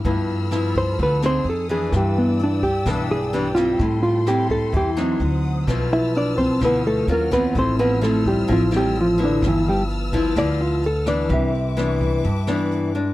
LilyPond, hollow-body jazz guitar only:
\new Staff \with { instrumentName = "Hollow-body jazz guitar" } { \time 4/4 \key g \mixolydian \tempo 4 = 128 r4. c''8 b'8 c''8 a'8 aes'8 | g'8 b8 d'8 g'8 a'8 gis'8 g'8 f'8 | e'8 f'8 g'8 a'8 g'8 r4. | r8 <e' e''>8 <d' d''>8 <c' c''>8 <b b'>8 <a a'>8 <ais ais'>8 <b b'>8 |
<c' c''>8 <b b'>8 <a a'>8 <g g'>8 <f f'>8 <g g'>8 <f f'>8 <d d'>8 | <e e'>8 <g g'>8 r4 d''8 f'8 a'8 d''8 | e''4 r2. | }